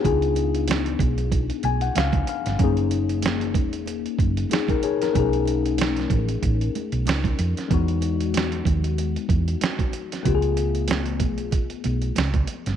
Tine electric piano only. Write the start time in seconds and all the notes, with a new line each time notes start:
Already playing: D#4
0.01 B3 D4 F4
0.06 G#4
1.65 G#5
1.82 F#5
1.97 F5
2.29 F5
2.59 G#3 C#4 D#4
2.64 A#3 G#4
4.52 D#4 G#4
4.70 D#4 A#4
4.84 G#4 C#5
5.02 D#4 A#4
5.13 A3 C#4 D#4
5.19 G#4
7.68 G#3 B3 D#4
7.74 F#4
10.23 A3 B3 F4
10.28 G4
10.35 G#4